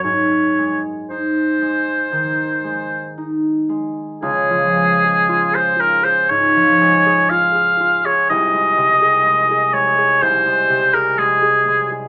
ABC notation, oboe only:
X:1
M:4/4
L:1/16
Q:1/4=60
K:Db
V:1 name="Oboe"
d3 z c8 z4 | A4- A c B c d4 f3 d | e6 d2 c3 B A3 z |]